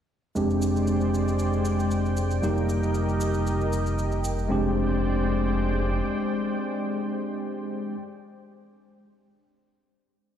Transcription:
0.35 F1 G#3 C4 D4 G4 C5 D5 G5, cabasa
0.50 cabasa
0.62 cabasa
0.76 cabasa
0.87 cabasa
1.01 cabasa
1.14 cabasa
1.28 cabasa
1.39 cabasa
1.53 cabasa
1.65 cabasa
1.80 cabasa
1.91 cabasa
2.06 cabasa
2.17 cabasa
2.31 cabasa
2.42 F1 G3 A#3 D#4 G4 A#4 D#5, cabasa
2.57 cabasa
2.69 cabasa
2.83 cabasa
2.94 cabasa
3.09 cabasa
3.21 cabasa
3.34 cabasa
3.47 cabasa
3.61 cabasa
3.73 cabasa
3.86 cabasa
3.99 cabasa
4.12 cabasa
4.24 cabasa
4.38 cabasa
4.48 F1 G#3 C4 D4 G4 C5 D5 G5

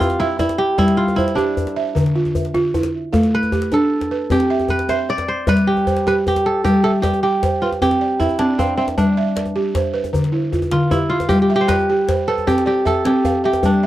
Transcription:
Already playing: G4 E5
0.00 F4, djembe bass
0.10 djembe slap
0.20 E4 E5, djembe tone
0.39 E4 D5, djembe bass
0.49 djembe slap, djembe tone
0.58 G4
0.78 G3 E4 D5, djembe slap, djembe tone, djembe bass
0.88 djembe slap
0.97 F4
1.08 djembe slap, djembe tone
1.16 E4 C5, djembe slap, djembe bass
1.28 djembe slap
1.35 D4 G4, djembe tone
1.57 djembe bass
1.67 djembe slap, djembe tone
1.76 E5
1.95 D3, djembe tone, djembe bass
2.06 djembe slap
2.15 F4, djembe slap
2.25 djembe tone
2.35 djembe bass
2.45 djembe slap
2.54 F4, djembe tone
2.64 djembe slap
2.74 E4, djembe bass
2.83 djembe slap, djembe tone
3.13 A3 A4, djembe slap, djembe tone, djembe bass
3.23 djembe slap
3.35 B4
3.43 djembe slap, djembe tone
3.52 G4, djembe slap, djembe bass
3.62 djembe slap
3.72 D4 A4, djembe tone
4.01 djembe slap, djembe tone
4.11 B4
4.30 C4 G4, djembe tone, djembe bass
4.40 djembe slap
4.50 E5
4.60 djembe tone
4.68 B4, djembe slap, djembe bass
4.79 djembe slap
4.89 C5 E5, djembe slap, djembe tone
5.09 D5, djembe slap
5.18 djembe slap, djembe tone
5.28 C5
5.47 G3 B4 D5, djembe slap, djembe tone, djembe bass
5.57 djembe slap
5.67 G4
5.77 djembe tone
5.87 C5, djembe slap, djembe bass
5.97 djembe slap
6.07 G4 B4, djembe tone
6.16 djembe slap
6.27 G4, djembe bass
6.36 djembe slap, djembe tone
6.46 A4
6.64 G3 G4, djembe bass
6.84 A4 E5, djembe slap
7.02 G4 D5, djembe slap, djembe bass
7.13 djembe tone
7.23 G4
7.43 C5, djembe slap, djembe bass
7.62 F4 B4
7.72 djembe tone
7.82 C4 G4, djembe bass
7.91 djembe slap
8.01 D5
8.20 E4 E5, djembe slap, djembe bass
8.29 djembe tone
8.39 C4 D4, djembe slap
8.49 djembe slap
8.59 C4 F5, djembe bass
8.77 C4 E5
8.88 djembe slap, djembe tone
8.98 G3 D4, djembe bass
9.17 E5, djembe slap
9.36 D5, djembe slap
9.46 djembe tone
9.56 G4
9.75 C5, djembe slap, djembe bass
9.94 B4
10.04 djembe tone
10.13 D3, djembe bass
10.24 djembe slap
10.32 E4
10.52 F4, djembe slap, djembe bass
10.62 djembe tone
10.71 D3 F4, djembe slap
10.81 djembe slap
10.91 E4 G4, djembe bass
11.10 F4
11.20 djembe slap, djembe tone
11.29 G3 G4, djembe bass
11.42 G4
11.50 E5, djembe slap
11.56 G4
11.61 C5
11.68 B4 D5, djembe slap, djembe bass
11.79 djembe tone
11.90 G4
12.09 C5, djembe slap, djembe bass
12.28 A4 B4
12.38 djembe tone
12.47 C4 G4, djembe bass
12.58 djembe slap
12.66 G4 D5
12.85 A4 E5, djembe slap, djembe bass
13.05 C4 G4, djembe slap
13.15 djembe slap
13.25 F5, djembe bass
13.44 G4 E5
13.53 djembe slap, djembe tone
13.63 G3 D4, djembe bass
13.83 E5

